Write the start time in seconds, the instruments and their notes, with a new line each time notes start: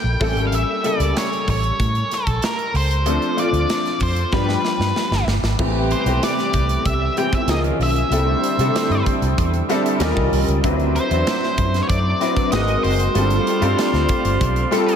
Already playing: grand piano G3 A#3 D4 F4 A4, lead electric guitar G5
0.04 fingered electric bass A#1
0.20 fingered electric bass A1, grand piano G3 A#3 C4 E4 A4, kick, open hi-hat
0.24 grand piano C#4, lead electric guitar G5
0.35 fingered electric bass G#1, closed hi-hat
0.47 fingered electric bass A1, lead electric guitar F5
0.52 lead electric guitar E5, closed hi-hat
0.83 grand piano C#3 G3 A#3 E4 A4, lead electric guitar D5, closed hi-hat
0.99 fingered electric bass C#2, closed hi-hat
1.17 lead electric guitar C#5, snare, closed hi-hat
1.33 closed hi-hat
1.47 fingered electric bass A1, lead electric guitar C#5, kick, open hi-hat
1.64 closed hi-hat
1.80 fingered electric bass A2, kick, closed hi-hat
1.95 closed hi-hat
2.11 lead electric guitar A4, snare, closed hi-hat
2.27 fingered electric bass A#1, kick, closed hi-hat
2.42 lead electric guitar A#4, snare, closed hi-hat
2.59 closed hi-hat
2.74 fingered electric bass C#2, lead electric guitar C5, open hi-hat
2.91 closed hi-hat
3.05 fingered electric bass D2, grand piano F3 A3 C4 D4 A4, closed hi-hat
3.22 closed hi-hat
3.37 grand piano F3 A3 C4 D4 F4, lead electric guitar D5, closed hi-hat
3.53 fingered electric bass D2, closed hi-hat
3.70 snare, closed hi-hat
3.85 snare, closed hi-hat
4.00 fingered electric bass F2, lead electric guitar C5, kick, open hi-hat
4.16 closed hi-hat
4.32 fingered electric bass G2, grand piano F3 G3 B3 D4 G4, lead electric guitar B4, kick, snare
4.49 snare
4.65 snare
4.79 fingered electric bass G2, snare
4.96 snare
5.11 fingered electric bass G1, snare
5.26 fingered electric bass G1, snare
5.42 fingered electric bass G#1, snare
5.58 fingered electric bass A1, analog synth pad C3 G3 A3 G4, grand piano E3 A3 B3 C4 G4, horn section E4 G4 B4, kick, crash
5.91 lead electric guitar C5, closed hi-hat
6.05 fingered electric bass B1, grand piano E3 A3 B3 C4 G4, closed hi-hat
6.23 lead electric guitar D5, snare, closed hi-hat
6.39 snare, closed hi-hat
6.53 fingered electric bass C2, kick, closed hi-hat
6.69 closed hi-hat
6.85 fingered electric bass C2, lead electric guitar E5, kick, closed hi-hat
7.17 grand piano E3 A3 B3 C4 G4, lead electric guitar G5, closed hi-hat
7.33 lead electric guitar E5, kick, closed hi-hat
7.47 fingered electric bass C#2, analog synth pad D#3 A#3 C#4 F4, grand piano F3 A#3 C#4 D#4 G#4, horn section D#4 F4 A#4, lead electric guitar D#5, snare, closed hi-hat
7.64 closed hi-hat
7.79 fingered electric bass B1, lead electric guitar E5, open hi-hat
7.96 closed hi-hat
8.10 fingered electric bass C2, analog synth pad D3 A3 C4 E4, grand piano G3 C4 D4 E4 A4, horn section G4 A4 C5, closed hi-hat
8.44 closed hi-hat
8.58 fingered electric bass C3, grand piano G3 C4 D4 E4 A4, closed hi-hat
8.76 snare, closed hi-hat
8.90 fingered electric bass G2, closed hi-hat
9.06 kick, closed hi-hat
9.22 fingered electric bass C2, closed hi-hat
9.38 fingered electric bass E2, kick, closed hi-hat
9.54 closed hi-hat
9.69 grand piano G3 C4 D4 E4 A4, snare, closed hi-hat
9.86 closed hi-hat
9.99 fingered electric bass D#2, analog synth pad D#3 G3 C#4 F4, grand piano G3 C#4 D#4 F4 A#4, horn section G4 A#4 D#5, snare, closed hi-hat
10.16 fingered electric bass C2, kick
10.32 fingered electric bass C2, open hi-hat
10.48 fingered electric bass C#2, closed hi-hat
10.63 fingered electric bass D2, grand piano F#3 C4 D4 E4 B4, analog synth pad F#3 A3 C4 E4, horn section E4 C5 E5, kick, closed hi-hat
10.80 closed hi-hat
10.96 lead electric guitar C5, closed hi-hat
11.11 fingered electric bass E2, grand piano F#3 C4 D4 E4 C5, closed hi-hat
11.27 snare, closed hi-hat
11.43 snare
11.58 fingered electric bass F#2, kick, closed hi-hat
11.74 snare, closed hi-hat
11.83 lead electric guitar C#5
11.89 fingered electric bass F#2, lead electric guitar D5, kick, closed hi-hat
12.20 grand piano F#3 C4 D4 E4 B4, snare, closed hi-hat
12.37 kick, closed hi-hat
12.52 fingered electric bass G#1, grand piano G#3 C4 D#4 F#4 G#4, analog synth pad G#3 A#3 F#4, horn section C5 D#5 F#5, lead electric guitar D#5, snare, closed hi-hat
12.59 grand piano A#4
12.68 closed hi-hat
12.83 fingered electric bass F#1, lead electric guitar C5, open hi-hat
13.00 closed hi-hat
13.14 fingered electric bass G1, grand piano G3 C4 D4 F4 A4, analog synth pad G3 A3 F4, horn section C5 D5 F5, closed hi-hat
13.30 closed hi-hat
13.47 closed hi-hat
13.61 fingered electric bass G2, grand piano G3 C4 D4 F4 A4, closed hi-hat
13.79 snare, closed hi-hat
13.93 fingered electric bass D2, snare, closed hi-hat
14.09 kick, closed hi-hat
14.25 fingered electric bass G1, closed hi-hat
14.41 fingered electric bass B1, kick, closed hi-hat
14.56 closed hi-hat
14.71 grand piano G3 C4 D4 F4 A4, snare, closed hi-hat
14.88 closed hi-hat